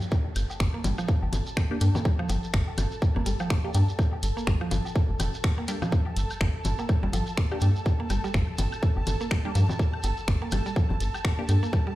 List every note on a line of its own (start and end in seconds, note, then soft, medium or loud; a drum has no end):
0.00 11.95 A4 medium
0.00 11.95 A5 medium
0.00 downlifter medium
0.00 shekere medium
0.11 kick loud
0.11 low woodblock soft
0.11 shekere soft
0.36 0.45 G1 loud
0.36 closed hi-hat medium
0.36 high woodblock medium
0.36 shekere medium
0.50 low woodblock soft
0.50 shekere medium
0.60 0.69 G1 medium
0.60 finger snap loud
0.60 kick loud
0.60 shekere soft
0.74 0.79 A#3 medium
0.84 0.93 G1 medium
0.84 0.87 G3 medium
0.84 closed hi-hat loud
0.84 low conga loud
0.84 low woodblock soft
0.84 shekere medium
0.98 1.04 F3 loud
0.98 high woodblock medium
0.98 shekere medium
1.08 1.13 F3 medium
1.08 kick loud
1.08 shekere soft
1.22 1.29 G1 loud
1.22 low woodblock soft
1.33 1.41 G1 medium
1.33 closed hi-hat loud
1.33 low conga medium
1.33 shekere medium
1.47 shekere medium
1.57 finger snap loud
1.57 kick loud
1.57 high woodblock medium
1.57 low woodblock soft
1.57 shekere soft
1.71 1.77 A#3 medium
1.71 1.77 D4 medium
1.71 1.77 G4 loud
1.81 1.90 G2 medium
1.81 1.89 A#3 medium
1.81 1.89 D4 medium
1.81 1.89 G4 medium
1.81 closed hi-hat medium
1.81 shekere medium
1.95 2.00 A#3 medium
1.95 low conga loud
1.95 low woodblock soft
1.95 shekere soft
2.05 2.08 G3 medium
2.05 kick loud
2.05 shekere soft
2.19 2.25 F3 loud
2.19 high woodblock medium
2.29 2.38 G1 loud
2.29 2.34 F3 medium
2.29 closed hi-hat loud
2.29 low woodblock soft
2.29 shekere medium
2.44 shekere medium
2.53 2.62 G1 medium
2.53 finger snap loud
2.53 kick loud
2.53 shekere soft
2.68 low woodblock soft
2.78 2.86 G1 medium
2.78 closed hi-hat medium
2.78 low conga loud
2.78 high woodblock medium
2.78 shekere loud
2.92 shekere medium
3.02 kick loud
3.02 low woodblock soft
3.02 shekere soft
3.16 3.22 G1 loud
3.16 3.21 A#3 medium
3.16 low conga medium
3.26 3.35 G1 medium
3.26 3.29 G3 medium
3.26 closed hi-hat loud
3.26 shekere loud
3.39 3.45 F3 loud
3.39 high woodblock medium
3.39 low woodblock soft
3.39 shekere medium
3.50 3.55 F3 medium
3.50 finger snap loud
3.50 kick loud
3.50 shekere soft
3.64 3.70 A#3 medium
3.64 3.70 D4 medium
3.64 3.70 G4 loud
3.74 3.83 G2 medium
3.74 3.82 A#3 medium
3.74 3.82 D4 medium
3.74 3.82 G4 medium
3.74 closed hi-hat loud
3.74 low woodblock soft
3.74 shekere medium
3.89 shekere medium
3.99 kick loud
3.99 high woodblock medium
3.99 shekere soft
4.13 low woodblock soft
4.23 4.32 G1 loud
4.23 closed hi-hat medium
4.23 shekere loud
4.37 4.42 A#3 medium
4.37 shekere medium
4.47 4.56 G1 medium
4.47 4.50 G3 medium
4.47 finger snap medium
4.47 kick loud
4.47 low woodblock soft
4.47 shekere soft
4.61 4.66 F3 loud
4.61 high woodblock medium
4.71 4.80 G1 medium
4.71 4.76 F3 medium
4.71 closed hi-hat loud
4.71 low conga loud
4.71 shekere loud
4.85 low woodblock soft
4.85 shekere medium
4.95 kick loud
4.95 shekere soft
5.10 5.16 G1 loud
5.20 5.28 F1 loud
5.20 closed hi-hat loud
5.20 low conga medium
5.20 high woodblock medium
5.20 low woodblock soft
5.20 shekere loud
5.34 shekere medium
5.44 finger snap medium
5.44 kick loud
5.44 shekere soft
5.58 5.63 A#3 medium
5.58 low woodblock soft
5.68 5.71 G3 medium
5.68 5.76 A#3 medium
5.68 5.76 D4 medium
5.68 5.76 G4 medium
5.68 closed hi-hat medium
5.68 shekere loud
5.82 5.87 F3 loud
5.82 low conga loud
5.82 high woodblock medium
5.82 shekere medium
5.92 5.97 F3 medium
5.92 kick loud
5.92 shekere soft
6.06 low woodblock soft
6.17 6.25 G1 loud
6.17 closed hi-hat medium
6.17 shekere medium
6.30 high woodblock medium
6.30 shekere medium
6.40 6.49 G1 medium
6.40 finger snap medium
6.40 kick loud
6.40 low woodblock soft
6.40 shekere soft
6.65 6.74 G1 medium
6.65 closed hi-hat medium
6.65 low conga medium
6.65 shekere medium
6.78 6.84 A#3 medium
6.78 low woodblock soft
6.78 shekere soft
6.89 6.92 G3 medium
6.89 kick loud
6.89 high woodblock medium
6.89 shekere soft
7.03 7.09 G1 medium
7.03 7.07 G3 medium
7.03 low conga medium
7.13 7.22 G1 medium
7.13 7.18 F3 medium
7.13 closed hi-hat medium
7.13 low woodblock soft
7.13 shekere medium
7.27 shekere medium
7.37 finger snap medium
7.37 kick loud
7.37 shekere soft
7.51 7.57 A#3 medium
7.51 7.57 D4 medium
7.51 7.57 G4 loud
7.51 high woodblock medium
7.51 low woodblock soft
7.61 7.70 G2 medium
7.61 7.70 A#3 medium
7.61 7.70 D4 medium
7.61 7.70 G4 medium
7.61 closed hi-hat medium
7.61 shekere medium
7.76 shekere soft
7.86 kick loud
7.86 low woodblock soft
7.86 shekere soft
8.00 8.05 A#3 medium
8.10 8.19 G1 loud
8.10 8.13 G3 medium
8.10 closed hi-hat medium
8.10 high woodblock medium
8.10 shekere medium
8.24 8.28 G3 medium
8.24 low woodblock soft
8.24 shekere soft
8.34 8.43 G1 medium
8.34 8.39 F3 medium
8.34 finger snap medium
8.34 kick loud
8.34 shekere soft
8.58 8.67 G1 medium
8.58 closed hi-hat medium
8.58 low conga medium
8.58 low woodblock soft
8.58 shekere medium
8.72 high woodblock medium
8.72 shekere medium
8.82 kick loud
8.82 shekere soft
8.97 9.03 G1 loud
8.97 low woodblock soft
9.07 9.15 G1 medium
9.07 closed hi-hat medium
9.07 low conga medium
9.07 shekere medium
9.21 9.26 A#3 medium
9.21 shekere medium
9.31 9.34 G3 medium
9.31 finger snap medium
9.31 kick loud
9.31 high woodblock medium
9.31 low woodblock soft
9.31 shekere soft
9.45 9.49 G3 medium
9.45 9.51 A#3 loud
9.45 9.51 D4 medium
9.45 9.51 G4 loud
9.55 9.64 G2 medium
9.55 9.60 F3 medium
9.55 9.63 A#3 medium
9.55 9.63 D4 medium
9.55 9.63 G4 medium
9.55 closed hi-hat medium
9.55 shekere medium
9.69 low conga medium
9.69 low woodblock soft
9.69 shekere medium
9.79 kick loud
9.79 shekere soft
9.94 high woodblock medium
10.03 10.12 G1 loud
10.03 closed hi-hat medium
10.03 low woodblock soft
10.03 shekere medium
10.17 shekere medium
10.28 10.36 G1 medium
10.28 finger snap medium
10.28 kick loud
10.28 shekere soft
10.42 10.47 A#3 medium
10.42 low woodblock soft
10.52 10.61 G1 medium
10.52 10.55 G3 medium
10.52 closed hi-hat medium
10.52 low conga medium
10.52 high woodblock medium
10.52 shekere medium
10.66 10.70 G3 medium
10.66 shekere soft
10.76 10.81 F3 medium
10.76 kick loud
10.76 low woodblock soft
10.76 shekere soft
10.90 10.96 G1 loud
10.90 low conga medium
11.00 11.09 G1 medium
11.00 closed hi-hat medium
11.00 shekere medium
11.14 high woodblock medium
11.14 low woodblock soft
11.14 shekere soft
11.25 finger snap medium
11.25 kick loud
11.25 shekere soft
11.39 11.44 A#3 medium
11.39 11.44 D4 medium
11.39 11.44 G4 loud
11.48 11.57 G2 medium
11.48 11.57 A#3 medium
11.48 11.57 D4 medium
11.48 11.57 G4 medium
11.48 closed hi-hat medium
11.48 low woodblock soft
11.48 shekere medium
11.63 11.68 A#3 medium
11.63 shekere soft
11.73 11.76 G3 medium
11.73 kick loud
11.73 high woodblock medium
11.73 shekere soft
11.87 11.91 G3 medium
11.87 low woodblock soft